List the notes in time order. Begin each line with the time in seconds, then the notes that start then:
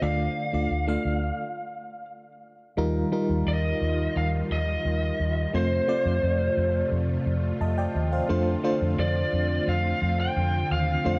0.02 D2 D3 A3 D4 F4 D5 F5
0.53 D2 A3 D4 F4 D5
0.71 D2
0.87 A3 D4 F4 F5
1.05 D2
2.77 D#2 D#3 G3 D#4 F4 A#4
3.12 G3 D#4 F4 A#4
3.29 D#2
3.47 D#2 D#5
3.81 D#2
4.16 D#2 F5
4.51 D#2 D#5
4.85 D#2
5.20 D#2
5.53 F2 C3 A3 C4 F4 C5
5.88 A3 C4 F4 D5
6.05 F2
6.23 F2
6.57 F2
6.92 F2
7.26 F2
7.61 F2 D#5 A5
7.78 D5 G5
7.95 D#2
8.12 C5 F5
8.29 F2 D3 A3 C4 D4 F4 C5
8.64 A3 D4 F4 C5
8.81 F2
8.98 F2 D5
9.33 F2
9.67 F2 F5
10.02 F2
10.20 G5
10.37 F2
10.71 D#2 F5
11.05 F2 A3 D4 F4 C5